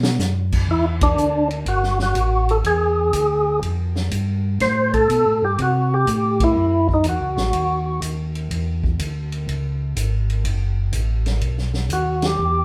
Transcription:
0.00 0.19 B2 medium
0.00 snare medium
0.19 0.67 F#2 medium
0.19 snare medium
0.19 hi-hat pedal medium
0.52 kick medium
0.52 crash medium
0.69 1.16 E2 medium
0.69 0.85 E4 medium
0.69 kick soft
1.01 1.48 D4 loud
1.01 kick medium
1.01 ride medium
1.18 1.65 D2 medium
1.18 hi-hat pedal medium
1.51 ride soft
1.66 2.14 G1 medium
1.66 1.98 F#4 medium
1.66 kick soft
1.66 ride medium
1.83 snare soft
1.99 2.52 F#4 medium
1.99 snare soft
2.15 2.63 A1 medium
2.15 kick soft
2.15 hi-hat pedal soft
2.15 ride medium
2.49 2.57 A4 medium
2.49 ride soft
2.64 3.12 E2 medium
2.64 3.60 G#4 medium
2.64 kick soft
2.64 ride medium
3.13 3.61 D2 medium
3.13 kick soft
3.13 hi-hat pedal medium
3.13 ride medium
3.62 4.10 F2 medium
3.62 kick soft
3.62 ride medium
3.96 snare soft
4.11 4.59 G2 medium
4.11 kick soft
4.11 hi-hat pedal soft
4.11 ride medium
4.60 5.08 A2 medium
4.60 4.92 C5 loud
4.60 kick soft
4.60 snare soft
4.60 ride medium
4.94 5.44 A4 loud
4.94 kick medium
4.94 ride soft
5.10 5.25 B2 medium
5.10 kick soft
5.10 hi-hat pedal soft
5.10 ride medium
5.26 5.42 A2 medium
5.42 5.57 G2 medium
5.42 5.60 G4 medium
5.58 6.06 C3 medium
5.58 5.94 F#4 medium
5.58 kick soft
5.58 ride medium
5.94 6.43 G4 loud
6.07 6.54 A2 medium
6.07 kick soft
6.07 hi-hat pedal medium
6.07 ride medium
6.40 6.87 E4 medium
6.40 kick medium
6.40 ride medium
6.56 7.03 F#2 medium
6.89 kick medium
6.94 7.06 D#4 medium
7.04 7.20 E2 medium
7.04 kick soft
7.04 hi-hat pedal medium
7.04 ride medium
7.09 8.00 F#4 medium
7.21 7.37 C#2 soft
7.37 7.52 A1 medium
7.37 snare medium
7.53 8.00 D#2 medium
7.53 kick soft
7.53 ride medium
8.02 8.49 D#2 medium
8.02 kick soft
8.02 hi-hat pedal medium
8.02 ride medium
8.35 ride soft
8.51 8.98 E2 medium
8.51 kick soft
8.51 ride medium
8.84 kick medium
8.99 9.47 D2 medium
8.99 kick soft
8.99 hi-hat pedal soft
8.99 ride medium
9.32 ride soft
9.48 9.95 C#2 medium
9.48 kick soft
9.48 ride medium
9.96 10.44 G#1 medium
9.96 kick soft
9.96 hi-hat pedal medium
9.96 ride medium
10.30 ride soft
10.44 10.92 F#1 medium
10.44 kick soft
10.44 ride medium
10.93 11.41 A1 medium
10.93 kick soft
10.93 hi-hat pedal medium
10.93 ride medium
11.26 snare soft
11.26 ride soft
11.41 11.89 B1 medium
11.41 kick soft
11.41 ride soft
11.58 snare soft
11.74 snare soft
11.90 12.38 D#2 medium
11.90 12.26 F#4 medium
11.90 kick soft
11.90 hi-hat pedal medium
11.90 ride medium
12.22 12.65 G4 medium
12.22 snare medium
12.22 ride medium
12.39 12.65 E2 medium

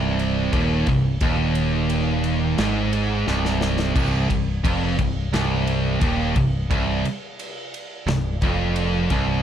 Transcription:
0.00 0.49 C1 loud
0.00 0.52 C2 loud
0.19 ride medium
0.53 0.85 D#1 loud
0.53 0.87 D#2 loud
0.53 kick loud
0.53 ride loud
0.87 1.19 C1 medium
0.87 1.15 C2 medium
0.87 kick loud
0.87 ride medium
1.21 2.55 D#1 medium
1.21 2.58 D#2 loud
1.21 kick loud
1.21 ride loud
1.55 ride medium
1.90 ride loud
2.24 ride medium
2.58 3.23 G#1 loud
2.58 3.26 G#2 loud
2.58 snare loud
2.58 ride loud
2.93 ride medium
3.27 3.92 C1 loud
3.27 3.94 C2 loud
3.27 snare medium
3.45 snare medium
3.61 snare medium
3.79 snare loud
3.95 4.28 C1 loud
3.95 4.28 C2 loud
3.95 kick loud
3.95 crash loud
4.29 4.62 C1 medium
4.29 4.57 C2 medium
4.29 kick medium
4.29 ride medium
4.64 4.97 F1 loud
4.64 4.98 F2 loud
4.64 kick loud
4.64 ride loud
4.99 5.31 C1 medium
4.99 5.26 C2 medium
4.99 kick loud
4.99 ride medium
5.34 5.98 C1 loud
5.34 6.01 C2 loud
5.34 snare loud
5.34 ride loud
5.67 ride medium
6.01 6.34 D#1 loud
6.01 6.35 D#2 loud
6.01 kick loud
6.01 ride loud
6.36 6.68 C1 medium
6.36 6.64 C2 medium
6.36 kick loud
6.36 ride medium
6.71 7.02 C1 medium
6.71 7.04 C2 loud
6.71 kick loud
6.71 ride loud
7.05 ride medium
7.39 ride loud
7.74 ride medium
8.07 8.39 C1 medium
8.07 8.36 C2 medium
8.07 snare loud
8.07 ride loud
8.42 9.07 F1 loud
8.42 9.10 F2 loud
8.42 kick loud
8.42 ride medium
8.76 ride loud
9.10 9.42 C1 loud
9.10 9.42 C2 loud
9.10 kick loud
9.10 ride medium

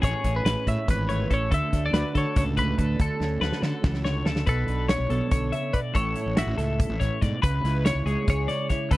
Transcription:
0.00 0.12 A1 medium
0.00 0.50 A3 medium
0.00 0.25 C#4 medium
0.00 0.45 E4 medium
0.00 0.45 G#4 loud
0.00 0.68 C#5 medium
0.00 kick loud
0.00 closed hi-hat medium
0.04 1.52 A2 medium
0.04 0.33 C#5 medium
0.24 0.43 A1 medium
0.24 1.30 C#4 medium
0.24 kick medium
0.24 snare soft
0.24 closed hi-hat medium
0.36 0.68 B4 medium
0.45 0.54 A1 medium
0.45 1.49 G#4 medium
0.45 0.66 B4 medium
0.45 snare loud
0.45 closed hi-hat medium
0.67 0.76 A2 medium
0.67 1.54 C#5 medium
0.67 0.87 E5 medium
0.67 kick medium
0.67 closed hi-hat medium
0.88 1.25 G#1 loud
0.88 1.49 E3 medium
0.88 1.33 B4 medium
0.88 kick loud
0.88 closed hi-hat medium
1.09 2.58 A3 medium
1.09 1.30 C#5 medium
1.09 snare soft
1.09 closed hi-hat medium
1.30 1.49 A1 medium
1.30 1.54 C#4 medium
1.30 1.50 A4 medium
1.30 1.53 C#5 medium
1.30 kick medium
1.30 closed hi-hat medium
1.51 1.61 D2 medium
1.51 2.99 D3 medium
1.51 1.93 A4 medium
1.51 1.85 E5 medium
1.51 kick loud
1.51 closed hi-hat medium
1.73 1.91 D2 medium
1.73 2.80 D4 medium
1.73 kick medium
1.73 snare soft
1.73 closed hi-hat medium
1.86 2.17 D5 medium
1.93 2.03 D2 medium
1.93 3.43 F#4 medium
1.93 2.15 B4 medium
1.93 snare loud
1.93 closed hi-hat medium
2.15 2.24 D3 medium
2.15 2.57 A4 medium
2.15 4.48 A4 medium
2.15 2.36 C#5 medium
2.15 kick medium
2.15 closed hi-hat medium
2.36 2.74 C#2 loud
2.36 3.00 A2 medium
2.36 2.43 C#5 medium
2.36 kick loud
2.36 snare soft
2.36 closed hi-hat medium
2.57 4.51 A3 medium
2.57 2.78 B4 medium
2.57 3.01 B4 medium
2.57 kick medium
2.57 closed hi-hat medium
2.78 2.97 D2 medium
2.78 3.23 D4 medium
2.78 2.99 A4 medium
2.78 kick medium
2.78 closed hi-hat medium
2.99 3.09 D2 medium
2.99 3.85 D3 medium
2.99 4.23 A4 medium
2.99 kick loud
2.99 closed hi-hat medium
3.20 3.39 D2 medium
3.20 4.46 C#4 medium
3.20 snare medium
3.41 3.51 D2 medium
3.41 3.63 F#4 medium
3.41 3.62 B4 medium
3.41 snare medium
3.52 snare medium
3.62 3.72 D3 medium
3.62 4.45 F#4 medium
3.62 4.04 A4 medium
3.62 snare medium
3.84 4.21 C#2 loud
3.84 4.05 E3 medium
3.84 kick loud
3.84 snare medium
3.94 snare medium
4.05 4.27 D3 medium
4.05 4.26 C#5 medium
4.05 snare medium
4.25 4.44 D2 medium
4.25 4.48 C#3 medium
4.25 4.47 A4 medium
4.25 snare medium
4.36 snare medium
4.46 4.66 B1 loud
4.46 5.53 B2 medium
4.46 4.92 A4 medium
4.46 4.88 B4 medium
4.46 kick loud
4.46 closed hi-hat medium
4.68 4.96 B1 medium
4.68 5.93 D4 medium
4.68 closed hi-hat medium
4.88 5.10 C#5 medium
4.88 5.30 C#5 medium
4.88 snare loud
4.88 closed hi-hat medium
5.00 5.09 B1 medium
5.10 5.20 B1 medium
5.10 5.92 B3 medium
5.10 5.53 A4 medium
5.10 closed hi-hat medium
5.31 5.50 B1 medium
5.31 5.53 D3 medium
5.31 5.75 C#5 loud
5.31 kick loud
5.31 closed hi-hat medium
5.52 5.73 C#3 medium
5.52 5.73 E5 medium
5.52 closed hi-hat medium
5.73 5.95 B2 medium
5.73 5.79 B4 medium
5.73 5.95 D5 medium
5.73 kick medium
5.73 closed hi-hat medium
5.94 6.14 A1 loud
5.94 7.00 A2 medium
5.94 6.36 A4 medium
5.94 6.38 C#5 loud
5.94 kick medium
5.94 closed hi-hat medium
6.15 7.64 E4 medium
6.15 closed hi-hat medium
6.26 6.45 A1 medium
6.37 6.57 F#4 medium
6.37 7.18 E5 loud
6.37 snare loud
6.37 closed hi-hat loud
6.47 6.57 A1 medium
6.58 6.86 C#2 medium
6.58 7.40 A3 medium
6.58 7.00 A4 medium
6.58 snare soft
6.58 closed hi-hat medium
6.80 kick loud
6.80 closed hi-hat loud
6.89 7.08 A1 medium
7.00 7.21 A2 medium
7.00 7.21 C#5 medium
7.00 kick medium
7.00 snare soft
7.00 closed hi-hat medium
7.21 7.31 G#2 medium
7.21 7.42 B2 medium
7.21 7.42 D5 medium
7.21 kick medium
7.21 snare soft
7.21 closed hi-hat medium
7.42 7.62 C#2 loud
7.42 8.48 C#3 medium
7.42 7.85 B4 medium
7.42 7.87 B4 loud
7.42 kick loud
7.42 closed hi-hat medium
7.64 7.92 C#2 medium
7.64 8.70 E4 medium
7.64 snare soft
7.64 closed hi-hat medium
7.85 8.06 C#5 medium
7.85 8.26 C#5 loud
7.85 snare loud
7.85 closed hi-hat loud
7.95 8.05 C#2 medium
8.06 8.15 C#2 loud
8.06 8.89 G#3 medium
8.06 8.48 G#4 medium
8.06 closed hi-hat medium
8.27 8.46 C#2 medium
8.27 8.89 G#4 medium
8.27 8.68 C#5 loud
8.27 kick loud
8.27 snare soft
8.27 closed hi-hat medium
8.48 8.89 C#3 medium
8.48 8.69 D5 medium
8.48 snare soft
8.48 closed hi-hat medium
8.69 8.89 E4 medium
8.69 8.91 C#5 medium
8.69 kick medium
8.69 snare soft
8.69 closed hi-hat medium
8.91 8.97 C#2 loud
8.91 8.97 C#3 medium
8.91 8.97 A4 loud
8.91 8.97 B4 medium
8.91 kick loud
8.91 closed hi-hat medium

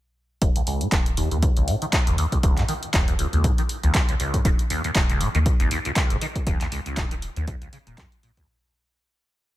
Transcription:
0.42 0.50 D#1 medium
0.42 0.49 D#2 medium
0.42 kick loud
0.42 closed hi-hat medium
0.56 0.62 C#2 medium
0.56 closed hi-hat soft
0.67 0.82 C#2 medium
0.67 open hi-hat loud
0.81 0.87 A#2 loud
0.81 closed hi-hat soft
0.92 1.23 D#1 medium
0.92 0.97 D#3 medium
0.92 kick loud
0.92 clap loud
0.92 closed hi-hat medium
1.06 closed hi-hat soft
1.17 1.29 D#2 medium
1.17 open hi-hat loud
1.31 1.38 D#2 medium
1.31 1.46 D#2 medium
1.31 closed hi-hat soft
1.42 1.50 C#2 medium
1.42 kick loud
1.42 closed hi-hat medium
1.57 1.63 G#1 medium
1.57 1.69 C#2 medium
1.57 closed hi-hat soft
1.68 1.75 A#2 loud
1.68 open hi-hat loud
1.82 1.85 D#3 medium
1.82 closed hi-hat soft
1.93 kick loud
1.93 clap loud
1.93 closed hi-hat medium
2.07 2.14 F#1 medium
2.07 2.16 D#2 medium
2.07 closed hi-hat soft
2.18 2.26 D#2 medium
2.18 open hi-hat loud
2.32 2.38 C#2 medium
2.32 kick medium
2.32 closed hi-hat soft
2.43 2.52 D#1 medium
2.43 2.59 C#2 medium
2.43 kick loud
2.43 closed hi-hat medium
2.57 2.64 A#2 loud
2.57 clap soft
2.57 closed hi-hat soft
2.69 2.73 D#3 medium
2.69 open hi-hat loud
2.83 closed hi-hat soft
2.94 3.24 D#1 medium
2.94 3.05 D#2 medium
2.94 kick loud
2.94 clap loud
2.94 closed hi-hat medium
3.08 3.14 D#2 medium
3.08 closed hi-hat soft
3.19 3.27 C#2 medium
3.19 open hi-hat loud
3.33 3.46 C#2 medium
3.33 3.47 D#2 medium
3.33 closed hi-hat soft
3.44 3.52 A#2 medium
3.44 kick loud
3.44 closed hi-hat medium
3.58 3.62 D#3 medium
3.58 closed hi-hat soft
3.69 open hi-hat loud
3.83 3.90 C#2 medium
3.83 3.93 D#2 medium
3.83 closed hi-hat soft
3.95 4.02 D#2 medium
3.95 kick loud
3.95 clap loud
3.95 closed hi-hat medium
4.09 4.15 C#2 medium
4.09 closed hi-hat soft
4.20 4.35 C#2 medium
4.20 open hi-hat loud
4.34 4.40 A#2 loud
4.34 kick medium
4.34 closed hi-hat soft
4.45 4.54 D#1 loud
4.45 4.50 D#3 medium
4.45 kick loud
4.45 closed hi-hat medium
4.59 closed hi-hat soft
4.70 4.82 D#2 medium
4.70 open hi-hat loud
4.84 4.90 D#2 medium
4.84 closed hi-hat soft
4.95 5.26 D#1 medium
4.95 5.03 C#2 medium
4.95 kick loud
4.95 clap loud
4.95 closed hi-hat medium
5.10 5.22 C#2 medium
5.10 closed hi-hat soft
5.21 5.28 A#2 loud
5.21 open hi-hat loud
5.35 5.49 D#2 medium
5.35 5.38 D#3 medium
5.35 closed hi-hat soft
5.46 kick loud
5.46 closed hi-hat medium
5.60 5.67 G#1 medium
5.60 5.69 D#2 medium
5.60 closed hi-hat soft
5.71 5.79 D#2 medium
5.71 open hi-hat loud
5.85 5.91 C#2 medium
5.85 closed hi-hat soft
5.96 6.12 C#2 medium
5.96 kick loud
5.96 clap loud
5.96 closed hi-hat medium
6.10 6.17 F#1 medium
6.10 6.17 A#2 loud
6.10 closed hi-hat soft
6.21 6.26 D#3 medium
6.21 open hi-hat loud
6.36 kick medium
6.36 closed hi-hat soft
6.47 6.55 D#1 loud
6.47 6.58 D#2 medium
6.47 kick loud
6.47 closed hi-hat medium
6.61 6.67 D#2 medium
6.61 clap soft
6.61 closed hi-hat soft
6.72 6.80 C#2 medium
6.72 open hi-hat loud
6.86 6.99 C#2 medium
6.86 closed hi-hat soft
6.97 7.28 D#1 medium
6.97 7.05 A#2 loud
6.97 kick loud
6.97 clap loud
6.97 closed hi-hat medium
7.11 7.15 D#3 medium
7.11 closed hi-hat soft
7.22 open hi-hat loud
7.36 7.46 D#2 medium
7.36 7.51 D#2 medium
7.36 closed hi-hat soft
7.48 kick loud
7.48 closed hi-hat medium
7.62 7.68 C#2 medium
7.62 closed hi-hat soft
7.73 7.77 C#3 medium
7.73 open hi-hat loud
7.87 7.94 D#1 loud
7.87 7.96 A#2 medium
7.87 closed hi-hat soft
7.98 8.06 F#2 medium
7.98 kick loud
7.98 clap loud
7.98 closed hi-hat medium
8.12 closed hi-hat soft
8.23 8.31 A#2 medium
8.23 open hi-hat loud
8.37 8.46 D#2 loud
8.37 kick medium
8.37 closed hi-hat soft

